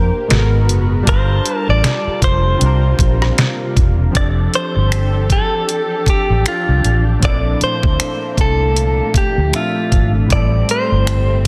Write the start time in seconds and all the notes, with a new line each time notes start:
Already playing: A#2 A#3 D4 G4 A#4 C5
0.28 G#1 G#2 G#3 B3 F#4, snare, closed hi-hat
0.33 A4
0.39 A#4
0.69 F#1, closed hi-hat
1.03 G3 D4
1.07 G1 G3 F4 A4 C5 A5, kick, closed hi-hat
1.12 A#4
1.46 closed hi-hat
1.57 A#4
1.69 A1 D5
1.84 snare, closed hi-hat
2.07 muted fingered electric bass stroke
2.22 F1 C5, kick, closed hi-hat
2.57 C3 C4
2.61 C2 C3 A#3 D4 F4, closed hi-hat
2.66 A#4
2.99 A#1, kick, closed hi-hat
3.22 cross-stick
3.38 snare, closed hi-hat
3.77 E1, kick, closed hi-hat
4.11 F3 C4 G4
4.15 F1 D4 G4 A4 D5, kick, closed hi-hat
4.20 A4
4.54 C5, closed hi-hat
4.76 G1
4.92 finger snap, closed hi-hat
5.30 A4, kick, closed hi-hat
5.69 closed hi-hat
6.06 G4, muted fingered electric bass stroke, kick, closed hi-hat
6.30 A1
6.46 F4, finger snap, closed hi-hat
6.68 C2
6.84 A1, closed hi-hat
7.19 A#2 F3 A3 A#3 C4, closed hi-hat
7.23 A#1 D4 E4 D5, kick
7.28 A4
7.61 C5, muted fingered electric bass stroke, closed hi-hat
7.83 D2, kick
8.00 finger snap, closed hi-hat
8.37 C2 A4, kick, closed hi-hat
8.76 closed hi-hat
9.14 G4, muted fingered electric bass stroke, kick, closed hi-hat
9.38 D2
9.52 A#2 F3 C4 D4 E5, finger snap, closed hi-hat
9.56 F4 A4
9.92 G#1, kick, closed hi-hat
10.26 A2 G3 C4
10.30 A1 G3 C4 E4 D5, kick, closed hi-hat
10.35 A4
10.69 C5, closed hi-hat
10.92 G1
11.07 finger snap, closed hi-hat